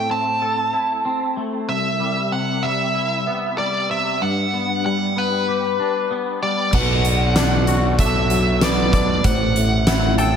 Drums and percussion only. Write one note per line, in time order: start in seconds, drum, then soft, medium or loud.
6.73 kick medium
6.73 crash medium
7.05 closed hi-hat soft
7.36 snare medium
7.36 closed hi-hat medium
7.67 closed hi-hat soft
7.99 kick medium
7.99 closed hi-hat medium
8.30 closed hi-hat medium
8.61 snare medium
8.61 closed hi-hat medium
8.93 kick medium
8.93 closed hi-hat soft
9.24 kick medium
9.24 closed hi-hat medium
9.56 closed hi-hat soft
9.87 snare loud
9.87 closed hi-hat medium
10.18 closed hi-hat soft